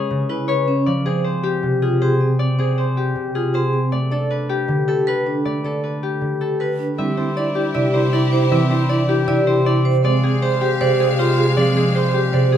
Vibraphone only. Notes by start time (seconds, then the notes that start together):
0.29 E4
0.49 B4
0.68 C#4
1.06 C5
1.82 F4
2.02 G#4
2.21 C4
2.59 C5
3.35 F4
3.54 G#4
3.73 C4
4.12 D5
4.88 G4
5.07 B4
5.26 D4
5.65 D5
6.41 G4
6.60 B4
6.79 D4
6.99 C4
7.37 D5
7.75 D5
8.13 E4
8.33 C5
8.52 C4
8.90 D5
9.28 D5
9.66 E4
9.85 C5
10.04 C4
10.43 C5
10.81 C5
11.19 F4
11.38 G#4
11.57 C4
11.95 C5
12.33 C5